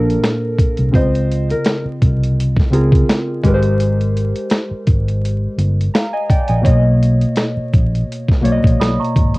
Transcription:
Already playing: A#1 A#2 A#3 D4 A4 A#4 C5
0.10 closed hi-hat
0.24 finger snap, snare, closed hi-hat
0.58 kick, closed hi-hat
0.77 C2, closed hi-hat
0.91 C#2 C#3 C4 F4 C5, kick, closed hi-hat
0.95 D#5
1.15 closed hi-hat
1.32 closed hi-hat
1.50 A#4, closed hi-hat
1.65 finger snap, snare, closed hi-hat
1.85 muted fingered electric bass stroke
2.02 C2, kick, closed hi-hat
2.23 closed hi-hat
2.40 closed hi-hat
2.57 kick, snare
2.70 C#2 C#3 C4 F4 G#4 A#4, closed hi-hat
2.92 kick, closed hi-hat
3.09 finger snap, snare, closed hi-hat
3.43 G#1 G#3 G4 A#4, kick, closed hi-hat
3.48 B4
3.54 C5
3.63 closed hi-hat
3.80 closed hi-hat
4.01 closed hi-hat
4.17 closed hi-hat
4.36 closed hi-hat
4.50 finger snap, snare, closed hi-hat
4.71 muted fingered electric bass stroke
4.87 G#1, kick, closed hi-hat
5.08 closed hi-hat
5.25 closed hi-hat
5.58 G1, closed hi-hat
5.81 closed hi-hat
5.94 F5 A#5, finger snap, snare, closed hi-hat
6.13 D#5 G#5
6.30 D5 G5, kick, closed hi-hat
6.48 A#1 D#5 G#5, closed hi-hat
6.62 B1 B2 A#3 C#5, kick
6.66 D#5, closed hi-hat
7.03 closed hi-hat
7.21 closed hi-hat
7.36 finger snap, snare, closed hi-hat
7.57 muted fingered electric bass stroke
7.73 A#1, kick, closed hi-hat
7.95 closed hi-hat
8.12 closed hi-hat
8.28 kick, snare
8.41 B1 B2 A#3 C#5, closed hi-hat
8.45 D5
8.52 D#5
8.64 A#1, kick, closed hi-hat
8.80 B1 B5 D#6, finger snap, snare, closed hi-hat
9.00 A#5 C#6
9.04 closed hi-hat
9.16 G#1, kick, closed hi-hat
9.34 closed hi-hat

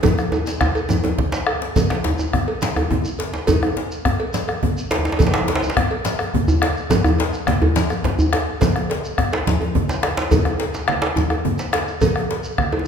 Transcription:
0.03 bombo low, cowbell, djembe tone, high conga, low conga, djembe bass, shekere
0.18 bombo rim, djembe tone, shekere
0.32 bombo rim, cowbell, djembe tone, shekere
0.47 djembe slap, shekere
0.61 bombo rim, bombo low, djembe tone, low conga, shekere
0.75 cowbell, shekere
0.89 djembe slap, djembe tone, high conga, djembe bass, shekere
1.04 cowbell, djembe slap, djembe tone, high conga
1.18 bombo rim, bombo low, low conga
1.32 djembe slap, high conga, shekere
1.34 djembe slap
1.47 bombo rim, cowbell
1.62 djembe slap
1.76 bombo low, cowbell, high conga, low conga, djembe bass, shekere
1.90 bombo rim, djembe slap, djembe tone
2.04 djembe slap, djembe bass
2.19 djembe tone, shekere
2.33 bombo rim, bombo low, low conga, djembe bass
2.48 cowbell
2.62 bombo rim, djembe slap, high conga, shekere
2.76 bombo rim, cowbell, djembe tone, djembe bass
2.91 bombo low, djembe tone, djembe bass, low conga
3.05 high conga, shekere
3.19 cowbell, djembe slap
3.34 djembe slap, shekere
3.47 bombo low, cowbell, high conga, djembe bass, low conga, shekere
3.63 bombo rim, djembe tone
3.77 djembe slap
3.91 shekere
4.05 bombo rim, bombo low, djembe bass, low conga
4.20 cowbell
4.34 bombo rim, djembe slap, high conga, shekere
4.48 bombo rim, cowbell, djembe tone
4.62 bombo low, low conga, djembe bass
4.78 high conga, shekere
4.91 cowbell, djembe slap
4.98 djembe tone
5.05 djembe slap, shekere
5.12 djembe slap
5.19 bombo low, cowbell, djembe tone, high conga, djembe bass, low conga, shekere
5.27 djembe slap
5.34 bombo rim, djembe slap, djembe tone
5.41 djembe tone
5.48 cowbell, djembe slap
5.55 djembe slap
5.63 djembe tone, shekere
5.70 djembe slap
5.77 bombo rim, bombo low, djembe bass, low conga
5.91 cowbell
6.05 bombo rim, djembe slap, high conga, shekere
6.19 bombo rim, cowbell, djembe tone
6.34 bombo low, low conga, djembe bass
6.48 high conga, djembe bass, shekere
6.62 bombo rim, cowbell, djembe slap
6.77 shekere
6.90 bombo rim, bombo low, cowbell, djembe slap, high conga, low conga, djembe bass, shekere
7.04 bombo rim, djembe tone, djembe bass, shekere
7.19 cowbell, djembe slap
7.33 bombo rim, high conga, shekere
7.47 bombo rim, bombo low, djembe slap, low conga, djembe bass
7.62 cowbell, djembe slap, high conga, djembe bass
7.76 bombo rim, djembe slap, high conga, shekere
7.90 bombo rim, cowbell, djembe tone, shekere
8.04 bombo rim, bombo low, djembe slap, djembe bass, low conga
8.19 high conga, djembe bass, shekere
8.33 bombo rim, cowbell, djembe slap
8.47 bombo rim, djembe slap
8.61 bombo low, cowbell, djembe slap, high conga, djembe bass, low conga, shekere
8.76 bombo rim, djembe tone
8.90 cowbell, djembe slap
9.04 shekere
9.18 bombo rim, bombo low, djembe bass, low conga
9.33 cowbell, djembe slap
9.47 bombo rim, djembe slap, high conga, djembe bass, shekere
9.61 cowbell, djembe tone
9.75 bombo low, djembe bass, low conga
9.89 djembe slap, high conga, shekere
10.03 bombo rim, cowbell, djembe slap
10.17 djembe slap, shekere
10.31 bombo low, cowbell, high conga, djembe bass, low conga, shekere
10.45 bombo rim, djembe tone
10.60 cowbell, djembe slap
10.74 djembe slap, shekere
10.88 bombo rim, djembe slap, low conga
11.02 cowbell, djembe slap
11.16 bombo rim, djembe slap, high conga, djembe bass, shekere
11.30 bombo rim, cowbell, djembe tone
11.45 djembe bass, low conga
11.59 djembe slap, shekere
11.73 bombo rim, cowbell, djembe slap
11.88 shekere
12.01 bombo low, cowbell, high conga, low conga, djembe bass, shekere
12.16 bombo rim, djembe tone
12.31 cowbell, djembe slap
12.44 shekere
12.58 bombo rim, bombo low, low conga
12.72 cowbell, djembe tone
12.79 djembe tone

